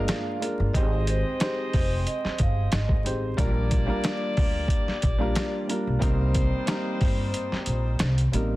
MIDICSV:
0, 0, Header, 1, 7, 480
1, 0, Start_track
1, 0, Key_signature, -3, "minor"
1, 0, Tempo, 659341
1, 541, Time_signature, 4, 2, 24, 8
1, 6234, End_track
2, 0, Start_track
2, 0, Title_t, "Vibraphone"
2, 0, Program_c, 0, 11
2, 536, Note_on_c, 0, 75, 98
2, 754, Note_off_c, 0, 75, 0
2, 789, Note_on_c, 0, 72, 86
2, 1476, Note_off_c, 0, 72, 0
2, 1503, Note_on_c, 0, 75, 89
2, 1718, Note_off_c, 0, 75, 0
2, 1756, Note_on_c, 0, 77, 72
2, 1965, Note_off_c, 0, 77, 0
2, 1985, Note_on_c, 0, 75, 83
2, 2199, Note_off_c, 0, 75, 0
2, 6234, End_track
3, 0, Start_track
3, 0, Title_t, "Saxophone section"
3, 0, Program_c, 1, 65
3, 0, Note_on_c, 1, 58, 81
3, 0, Note_on_c, 1, 68, 88
3, 0, Note_on_c, 1, 77, 94
3, 265, Note_off_c, 1, 58, 0
3, 265, Note_off_c, 1, 68, 0
3, 265, Note_off_c, 1, 77, 0
3, 548, Note_on_c, 1, 60, 88
3, 548, Note_on_c, 1, 68, 80
3, 548, Note_on_c, 1, 75, 97
3, 2195, Note_off_c, 1, 75, 0
3, 2196, Note_off_c, 1, 60, 0
3, 2196, Note_off_c, 1, 68, 0
3, 2463, Note_on_c, 1, 58, 91
3, 2463, Note_on_c, 1, 67, 85
3, 2464, Note_on_c, 1, 74, 97
3, 4113, Note_off_c, 1, 58, 0
3, 4113, Note_off_c, 1, 67, 0
3, 4113, Note_off_c, 1, 74, 0
3, 4373, Note_on_c, 1, 55, 91
3, 4373, Note_on_c, 1, 63, 89
3, 4373, Note_on_c, 1, 72, 94
3, 6028, Note_off_c, 1, 55, 0
3, 6028, Note_off_c, 1, 63, 0
3, 6028, Note_off_c, 1, 72, 0
3, 6234, End_track
4, 0, Start_track
4, 0, Title_t, "Upright piano"
4, 0, Program_c, 2, 0
4, 0, Note_on_c, 2, 56, 107
4, 0, Note_on_c, 2, 58, 95
4, 0, Note_on_c, 2, 62, 95
4, 0, Note_on_c, 2, 65, 97
4, 0, Note_on_c, 2, 70, 115
4, 273, Note_off_c, 2, 56, 0
4, 276, Note_off_c, 2, 58, 0
4, 278, Note_off_c, 2, 62, 0
4, 281, Note_off_c, 2, 65, 0
4, 284, Note_off_c, 2, 70, 0
4, 285, Note_on_c, 2, 56, 76
4, 290, Note_on_c, 2, 58, 73
4, 296, Note_on_c, 2, 62, 74
4, 301, Note_on_c, 2, 65, 75
4, 306, Note_on_c, 2, 70, 88
4, 516, Note_off_c, 2, 56, 0
4, 518, Note_off_c, 2, 58, 0
4, 521, Note_off_c, 2, 62, 0
4, 524, Note_off_c, 2, 65, 0
4, 526, Note_off_c, 2, 70, 0
4, 541, Note_on_c, 2, 56, 103
4, 546, Note_on_c, 2, 60, 93
4, 551, Note_on_c, 2, 63, 86
4, 556, Note_on_c, 2, 67, 92
4, 562, Note_on_c, 2, 72, 103
4, 986, Note_off_c, 2, 56, 0
4, 989, Note_off_c, 2, 60, 0
4, 991, Note_off_c, 2, 63, 0
4, 994, Note_off_c, 2, 67, 0
4, 997, Note_off_c, 2, 72, 0
4, 1018, Note_on_c, 2, 56, 96
4, 1022, Note_on_c, 2, 60, 87
4, 1027, Note_on_c, 2, 63, 84
4, 1033, Note_on_c, 2, 67, 90
4, 1038, Note_on_c, 2, 72, 110
4, 2133, Note_off_c, 2, 56, 0
4, 2135, Note_off_c, 2, 60, 0
4, 2137, Note_off_c, 2, 63, 0
4, 2140, Note_off_c, 2, 67, 0
4, 2143, Note_off_c, 2, 72, 0
4, 2212, Note_on_c, 2, 56, 77
4, 2217, Note_on_c, 2, 60, 68
4, 2222, Note_on_c, 2, 63, 64
4, 2228, Note_on_c, 2, 67, 68
4, 2233, Note_on_c, 2, 72, 81
4, 2439, Note_off_c, 2, 56, 0
4, 2442, Note_off_c, 2, 60, 0
4, 2444, Note_off_c, 2, 63, 0
4, 2447, Note_off_c, 2, 67, 0
4, 2450, Note_off_c, 2, 72, 0
4, 2453, Note_on_c, 2, 55, 101
4, 2458, Note_on_c, 2, 58, 88
4, 2463, Note_on_c, 2, 62, 93
4, 2469, Note_on_c, 2, 65, 84
4, 2474, Note_on_c, 2, 70, 120
4, 2797, Note_off_c, 2, 55, 0
4, 2799, Note_off_c, 2, 58, 0
4, 2802, Note_off_c, 2, 62, 0
4, 2805, Note_off_c, 2, 65, 0
4, 2807, Note_off_c, 2, 70, 0
4, 2811, Note_on_c, 2, 55, 101
4, 2817, Note_on_c, 2, 58, 96
4, 2821, Note_on_c, 2, 62, 90
4, 2827, Note_on_c, 2, 65, 89
4, 2833, Note_on_c, 2, 70, 112
4, 3589, Note_off_c, 2, 55, 0
4, 3593, Note_off_c, 2, 58, 0
4, 3595, Note_off_c, 2, 62, 0
4, 3597, Note_off_c, 2, 65, 0
4, 3601, Note_off_c, 2, 70, 0
4, 3774, Note_on_c, 2, 55, 97
4, 3781, Note_on_c, 2, 58, 92
4, 3785, Note_on_c, 2, 62, 96
4, 3791, Note_on_c, 2, 65, 96
4, 3796, Note_on_c, 2, 70, 106
4, 4106, Note_off_c, 2, 55, 0
4, 4109, Note_off_c, 2, 58, 0
4, 4111, Note_off_c, 2, 62, 0
4, 4114, Note_off_c, 2, 65, 0
4, 4117, Note_off_c, 2, 70, 0
4, 4132, Note_on_c, 2, 55, 73
4, 4138, Note_on_c, 2, 58, 73
4, 4143, Note_on_c, 2, 62, 73
4, 4148, Note_on_c, 2, 65, 73
4, 4153, Note_on_c, 2, 70, 85
4, 4351, Note_off_c, 2, 55, 0
4, 4356, Note_off_c, 2, 58, 0
4, 4362, Note_on_c, 2, 55, 96
4, 4365, Note_off_c, 2, 62, 0
4, 4367, Note_off_c, 2, 65, 0
4, 4367, Note_on_c, 2, 58, 92
4, 4370, Note_off_c, 2, 70, 0
4, 4372, Note_on_c, 2, 60, 99
4, 4378, Note_on_c, 2, 63, 85
4, 4383, Note_on_c, 2, 70, 106
4, 4817, Note_off_c, 2, 55, 0
4, 4820, Note_off_c, 2, 58, 0
4, 4822, Note_off_c, 2, 60, 0
4, 4825, Note_off_c, 2, 63, 0
4, 4828, Note_off_c, 2, 70, 0
4, 4849, Note_on_c, 2, 55, 93
4, 4856, Note_on_c, 2, 58, 86
4, 4861, Note_on_c, 2, 60, 91
4, 4866, Note_on_c, 2, 63, 89
4, 4871, Note_on_c, 2, 70, 104
4, 5968, Note_off_c, 2, 55, 0
4, 5972, Note_off_c, 2, 58, 0
4, 5974, Note_off_c, 2, 60, 0
4, 5977, Note_off_c, 2, 63, 0
4, 5979, Note_off_c, 2, 70, 0
4, 6057, Note_on_c, 2, 55, 75
4, 6063, Note_on_c, 2, 58, 73
4, 6069, Note_on_c, 2, 60, 71
4, 6074, Note_on_c, 2, 63, 73
4, 6079, Note_on_c, 2, 70, 82
4, 6234, Note_off_c, 2, 55, 0
4, 6234, Note_off_c, 2, 58, 0
4, 6234, Note_off_c, 2, 60, 0
4, 6234, Note_off_c, 2, 63, 0
4, 6234, Note_off_c, 2, 70, 0
4, 6234, End_track
5, 0, Start_track
5, 0, Title_t, "Upright bass"
5, 0, Program_c, 3, 32
5, 435, Note_on_c, 3, 31, 96
5, 533, Note_off_c, 3, 31, 0
5, 543, Note_on_c, 3, 32, 107
5, 884, Note_off_c, 3, 32, 0
5, 1268, Note_on_c, 3, 29, 89
5, 1483, Note_off_c, 3, 29, 0
5, 1747, Note_on_c, 3, 31, 98
5, 1963, Note_off_c, 3, 31, 0
5, 1985, Note_on_c, 3, 32, 101
5, 2202, Note_off_c, 3, 32, 0
5, 2226, Note_on_c, 3, 33, 92
5, 2442, Note_off_c, 3, 33, 0
5, 2462, Note_on_c, 3, 34, 115
5, 2804, Note_off_c, 3, 34, 0
5, 3186, Note_on_c, 3, 38, 94
5, 3402, Note_off_c, 3, 38, 0
5, 3666, Note_on_c, 3, 34, 99
5, 3882, Note_off_c, 3, 34, 0
5, 4274, Note_on_c, 3, 35, 89
5, 4372, Note_off_c, 3, 35, 0
5, 4382, Note_on_c, 3, 36, 112
5, 4724, Note_off_c, 3, 36, 0
5, 5106, Note_on_c, 3, 31, 89
5, 5322, Note_off_c, 3, 31, 0
5, 5583, Note_on_c, 3, 34, 96
5, 5800, Note_off_c, 3, 34, 0
5, 5823, Note_on_c, 3, 36, 98
5, 6041, Note_off_c, 3, 36, 0
5, 6064, Note_on_c, 3, 33, 90
5, 6234, Note_off_c, 3, 33, 0
5, 6234, End_track
6, 0, Start_track
6, 0, Title_t, "Muted upright bass strokes"
6, 1636, Note_on_c, 9, 29, 50
6, 1709, Note_off_c, 9, 29, 0
6, 3556, Note_on_c, 9, 29, 52
6, 3629, Note_off_c, 9, 29, 0
6, 5474, Note_on_c, 9, 29, 49
6, 5547, Note_off_c, 9, 29, 0
6, 6234, End_track
7, 0, Start_track
7, 0, Title_t, "Drums"
7, 58, Note_on_c, 9, 42, 97
7, 64, Note_on_c, 9, 38, 122
7, 69, Note_on_c, 9, 40, 99
7, 131, Note_off_c, 9, 42, 0
7, 137, Note_off_c, 9, 38, 0
7, 142, Note_off_c, 9, 40, 0
7, 308, Note_on_c, 9, 42, 80
7, 381, Note_off_c, 9, 42, 0
7, 542, Note_on_c, 9, 36, 123
7, 545, Note_on_c, 9, 42, 102
7, 615, Note_off_c, 9, 36, 0
7, 618, Note_off_c, 9, 42, 0
7, 782, Note_on_c, 9, 42, 80
7, 854, Note_off_c, 9, 42, 0
7, 1020, Note_on_c, 9, 42, 94
7, 1028, Note_on_c, 9, 38, 110
7, 1033, Note_on_c, 9, 40, 91
7, 1093, Note_off_c, 9, 42, 0
7, 1100, Note_off_c, 9, 38, 0
7, 1106, Note_off_c, 9, 40, 0
7, 1262, Note_on_c, 9, 46, 52
7, 1266, Note_on_c, 9, 36, 99
7, 1335, Note_off_c, 9, 46, 0
7, 1339, Note_off_c, 9, 36, 0
7, 1504, Note_on_c, 9, 42, 97
7, 1577, Note_off_c, 9, 42, 0
7, 1636, Note_on_c, 9, 38, 40
7, 1709, Note_off_c, 9, 38, 0
7, 1736, Note_on_c, 9, 42, 79
7, 1745, Note_on_c, 9, 36, 95
7, 1809, Note_off_c, 9, 42, 0
7, 1818, Note_off_c, 9, 36, 0
7, 1978, Note_on_c, 9, 42, 100
7, 1984, Note_on_c, 9, 38, 122
7, 1990, Note_on_c, 9, 40, 98
7, 2051, Note_off_c, 9, 42, 0
7, 2057, Note_off_c, 9, 38, 0
7, 2063, Note_off_c, 9, 40, 0
7, 2105, Note_on_c, 9, 36, 93
7, 2177, Note_off_c, 9, 36, 0
7, 2228, Note_on_c, 9, 42, 80
7, 2300, Note_off_c, 9, 42, 0
7, 2461, Note_on_c, 9, 36, 119
7, 2464, Note_on_c, 9, 42, 101
7, 2534, Note_off_c, 9, 36, 0
7, 2537, Note_off_c, 9, 42, 0
7, 2700, Note_on_c, 9, 42, 77
7, 2705, Note_on_c, 9, 36, 94
7, 2773, Note_off_c, 9, 42, 0
7, 2778, Note_off_c, 9, 36, 0
7, 2938, Note_on_c, 9, 42, 93
7, 2945, Note_on_c, 9, 38, 115
7, 2951, Note_on_c, 9, 40, 96
7, 3011, Note_off_c, 9, 42, 0
7, 3018, Note_off_c, 9, 38, 0
7, 3024, Note_off_c, 9, 40, 0
7, 3181, Note_on_c, 9, 46, 51
7, 3185, Note_on_c, 9, 36, 96
7, 3254, Note_off_c, 9, 46, 0
7, 3258, Note_off_c, 9, 36, 0
7, 3409, Note_on_c, 9, 36, 99
7, 3423, Note_on_c, 9, 42, 98
7, 3482, Note_off_c, 9, 36, 0
7, 3496, Note_off_c, 9, 42, 0
7, 3555, Note_on_c, 9, 38, 40
7, 3628, Note_off_c, 9, 38, 0
7, 3656, Note_on_c, 9, 42, 79
7, 3664, Note_on_c, 9, 36, 96
7, 3729, Note_off_c, 9, 42, 0
7, 3737, Note_off_c, 9, 36, 0
7, 3898, Note_on_c, 9, 42, 105
7, 3904, Note_on_c, 9, 38, 122
7, 3909, Note_on_c, 9, 40, 94
7, 3971, Note_off_c, 9, 42, 0
7, 3977, Note_off_c, 9, 38, 0
7, 3982, Note_off_c, 9, 40, 0
7, 4145, Note_on_c, 9, 42, 82
7, 4218, Note_off_c, 9, 42, 0
7, 4380, Note_on_c, 9, 36, 120
7, 4382, Note_on_c, 9, 42, 101
7, 4453, Note_off_c, 9, 36, 0
7, 4455, Note_off_c, 9, 42, 0
7, 4619, Note_on_c, 9, 42, 83
7, 4625, Note_on_c, 9, 36, 96
7, 4692, Note_off_c, 9, 42, 0
7, 4697, Note_off_c, 9, 36, 0
7, 4857, Note_on_c, 9, 42, 94
7, 4864, Note_on_c, 9, 38, 115
7, 4870, Note_on_c, 9, 40, 93
7, 4930, Note_off_c, 9, 42, 0
7, 4937, Note_off_c, 9, 38, 0
7, 4943, Note_off_c, 9, 40, 0
7, 5101, Note_on_c, 9, 46, 51
7, 5105, Note_on_c, 9, 36, 97
7, 5174, Note_off_c, 9, 46, 0
7, 5177, Note_off_c, 9, 36, 0
7, 5342, Note_on_c, 9, 42, 99
7, 5415, Note_off_c, 9, 42, 0
7, 5476, Note_on_c, 9, 38, 41
7, 5549, Note_off_c, 9, 38, 0
7, 5576, Note_on_c, 9, 42, 82
7, 5649, Note_off_c, 9, 42, 0
7, 5818, Note_on_c, 9, 42, 97
7, 5824, Note_on_c, 9, 38, 118
7, 5829, Note_on_c, 9, 40, 95
7, 5891, Note_off_c, 9, 42, 0
7, 5897, Note_off_c, 9, 38, 0
7, 5902, Note_off_c, 9, 40, 0
7, 5955, Note_on_c, 9, 42, 52
7, 6028, Note_off_c, 9, 42, 0
7, 6068, Note_on_c, 9, 42, 78
7, 6140, Note_off_c, 9, 42, 0
7, 6234, End_track
0, 0, End_of_file